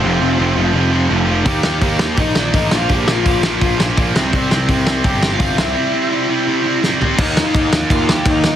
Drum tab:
CC |--------|--------|--------|--------|
HH |--------|o-o-o-o-|o-o-o-o-|o-o-o-o-|
SD |--------|-o-o-o-o|-o-o-o-o|-o-o-o-o|
FT |--------|--------|--------|--------|
BD |--------|o-o-o-o-|o-o-o-o-|o-o-o-o-|

CC |--------|x-x-x-x-|
HH |--------|--------|
SD |------o-|-o-o-o-o|
FT |-------o|--------|
BD |--------|o-o-o-o-|